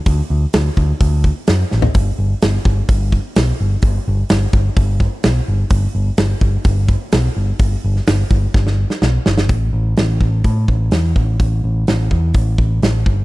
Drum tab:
HH |o---o---o---o---|o---o---o---o---|o---o---o---o---|o---o---o---o---|
SD |----o-------o-o-|----o-------o---|----o-------o---|----o-------o---|
FT |---------------o|----------------|----------------|----------------|
BD |o-----o-o-o-----|o-----o-o-o-----|o-----o-o-o-----|o-----o-o-o-----|

HH |o---o-----------|o---o---o---o---|o---o---o---o---|
SD |---oo---oo-oo-oo|----o-------o---|----o-------o---|
FT |----------------|----------------|----------------|
BD |o-----o-o-------|o-----o-o-o---o-|o-----o-o-o---o-|